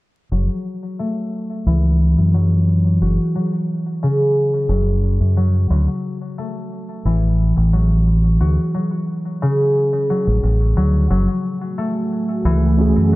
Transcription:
0.31 F#1 F#3
0.99 A3
1.66 C#2 E3
2.18 F#2
2.34 F#3
3.01 F#1 F#4
3.35 F#3
4.03 C#3
4.69 F#1 F#3
5.21 F#2
5.37 F#3
5.70 D2 F#3
6.38 A3
7.05 A1 E3
7.57 A1
7.73 F#3
8.40 D2 F#4
8.74 F#3
9.42 C#3
10.10 F#3
10.27 A1
10.43 A1
10.77 D2 F#3
11.10 F#1 F#3 A3 F#4 G#5
11.78 A3
12.45 C#2 E3
12.78 A3 C#4 F#4 G#4
12.97 F#2

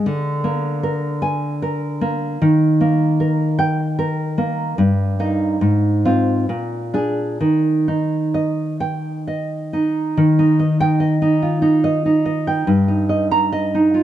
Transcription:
0.06 D3
0.44 A#3
0.83 A#4
1.22 G#5
1.62 A#4
2.01 A#3
2.42 D#3
2.81 A#3
3.20 A#4
3.59 G5
3.99 A#4
4.38 A#3
4.78 G2
5.19 A#3 D#4
5.61 G#2
6.05 C4 F4
6.49 A#2
6.94 D4 G#4
7.41 D#3
7.88 D#4
8.34 D#5
8.80 G5
9.27 D#5
9.73 D#4
10.17 D#3
10.39 D#4
10.59 D#5
10.80 G5
11.00 D#5
11.22 D#4
11.42 F4
11.62 D#4
11.84 D#5
12.06 D#4
12.25 D#5
12.47 G5
12.67 G2
12.88 D#4
13.09 D#5
13.31 A#5
13.52 D#5
13.75 D#4
13.94 F4

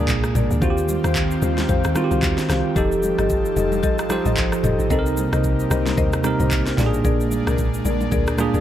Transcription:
Already playing: A#2 G#3 A#3 D4 G#4
0.08 C2, kick, clap, shaker
0.24 cross-stick, shaker
0.35 A#1 G#4 A#4 D5, mid tom, high conga, low conga, shaker
0.51 D2, shaker
0.61 D#2 D#3 C4 F4 F#4 G4 C5 F5, kick, low conga, shaker
0.70 G4
0.78 shaker
0.89 high conga, shaker
1.04 D#2 G4 C5 F5, cross-stick, high conga, shaker
1.15 kick, clap, shaker
1.31 shaker
1.42 D#2 G4 C5 F5, high conga, low conga, shaker
1.58 snare, high conga, shaker
1.69 F2 G4 C5 F5, kick, shaker
1.84 D#2, cross-stick, shaker
1.95 D#3 C4 F4 F#4, cross-stick, high conga, shaker
2.04 G4
2.11 C2 G4 C5 F5, high conga, shaker
2.23 D#2, kick, clap, shaker
2.38 snare, shaker
2.49 C2 G4 C5 F5, cross-stick, snare, high conga, low conga, shaker
2.75 F1 F3 D#4 G4 A4 D#5, kick, low conga, shaker
2.92 shaker
3.03 high conga, shaker
3.18 G1 G4 A4 D#5, cross-stick, high conga, shaker
3.30 kick, shaker
3.45 shaker
3.56 F1 G4 A4 D#5, high conga, low conga, shaker
3.72 high conga, shaker
3.83 A1 G4 A4 D#5, kick, shaker
3.98 cross-stick, shaker
4.09 F3 D#4 G4 C5, cross-stick, high conga, shaker
4.25 A1 G4 A4 D#5, mid tom, high conga, shaker
4.37 G1, kick, clap, shaker
4.52 cross-stick, shaker
4.63 F1 G4 A4 D#5, mid tom, high conga, low conga, shaker
4.79 A1, shaker
4.90 C2 C3 G3 A#3 C4 D#4 A4 A#4 C5 D#5, kick, low conga, shaker
4.99 A#4
5.06 shaker
5.17 high conga, shaker
5.32 C2 A#4 C5 D#5, cross-stick, high conga, shaker
5.44 kick, shaker
5.60 shaker
5.71 C2 A#4 C5 D#5, cross-stick, high conga, low conga, shaker
5.86 snare, high conga, shaker
5.97 D#2 A#4 C5 D#5, kick, shaker
6.13 cross-stick, shaker
6.24 C3 C4 D#4 A#4, cross-stick, high conga, shaker
6.40 C2 A#4 C5 D#5, mid tom, high conga, shaker
6.51 kick, clap, shaker
6.66 snare, shaker
6.77 A#1 A#2 G#3 A#3 D4 G4 G#4 A#4 D5, snare, mid tom, high conga, low conga, shaker
6.86 G#4
6.94 shaker
7.04 A#1 G#4 A#4 D5, kick, low conga, shaker
7.20 shaker
7.31 high conga, shaker
7.47 C2 G#4 A#4 D5, cross-stick, high conga, shaker
7.58 kick, shaker
7.74 shaker
7.85 A#1 G#4 A#4 D5, high conga, low conga, shaker
8.01 high conga, shaker
8.12 D2 G#4 A#4 D5, kick, shaker
8.27 cross-stick, shaker
8.38 A#2 A#3 D4 G#4, cross-stick, high conga, shaker
8.54 D2 G#4 A#4 D5, mid tom, high conga, shaker

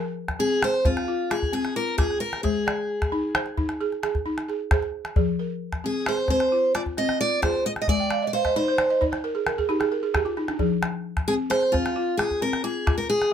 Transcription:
Already playing: F3 G#4 A#4
0.28 calabash thump, calabash click
0.39 C4 G#4
0.62 G#4 C5, calabash click
0.74 calabash click
0.85 C4 F4, calabash thump, calabash click
0.97 calabash click
1.08 F4
1.31 F4 G#4, calabash click
1.43 calabash thump
1.53 C4 G#4, calabash click
1.65 calabash click
1.76 F4 A#4
1.98 F4 G#4, calabash thump, calabash click
2.10 calabash click
2.20 A#4, calabash click
2.33 calabash click
2.43 G#3 G#4 C5, calabash thump
2.67 D5, calabash click
3.02 calabash thump, calabash click
3.12 D#4
3.35 C5, calabash click
3.46 calabash click
3.57 D#4, calabash thump
3.69 calabash click
3.81 G#4, calabash click
3.92 calabash click
4.03 G#4, calabash click
4.15 calabash thump, calabash click
4.26 D#4
4.38 calabash click
4.48 G#4, calabash click
4.71 G#4 C5, calabash thump, calabash click
4.83 calabash click
5.05 calabash click
5.16 F3 G#4, calabash thump
5.39 A#4
5.73 calabash thump, calabash click
5.84 C4 G#4
6.06 G#4 C5, calabash click
6.17 calabash click
6.28 C4 C5, calabash thump, calabash click
6.40 calabash click
6.52 F4
6.75 F4 D5, calabash click
6.86 calabash thump
6.97 C4 D#5, calabash click
7.09 calabash click
7.21 F4 D5
7.42 F4 G#4 C5, calabash thump, calabash click
7.54 calabash click
7.65 D#5, calabash click
7.76 calabash click
7.82 D#5
7.88 G#3 D5 G#5, calabash thump
8.00 G5
8.11 F5, calabash click
8.22 D#5
8.27 D5
8.33 C5 F5
8.45 D#5, calabash thump, calabash click
8.56 D#4 C5 D5
8.68 C5
8.78 D5, calabash click
8.90 D#5, calabash click
9.01 D#4 D5, calabash thump, calabash click
9.12 C5, calabash click
9.24 A#4
9.35 G#4
9.47 A#4, calabash click
9.58 G#4, calabash thump
9.69 D#4 G4, calabash click
9.80 G#4, calabash click
9.92 A#4
10.03 G#4
10.14 G4 G#4, calabash thump, calabash click
10.25 F4, calabash click
10.37 D#4, calabash click
10.48 D4, calabash click
10.59 F3 G#4, calabash thump
10.83 calabash click
11.17 calabash thump, calabash click
11.28 C4 G#4
11.50 G#4 C5, calabash click
11.63 calabash click
11.72 C4 F4, calabash thump, calabash click
11.86 calabash click
11.96 F4
12.17 F4 G#4, calabash click
12.31 calabash thump
12.42 C4 A#4, calabash click
12.53 calabash click
12.64 F4 G#4
12.87 F4, calabash thump, calabash click
12.98 A#4, calabash click
13.10 G#4, calabash click
13.22 calabash click

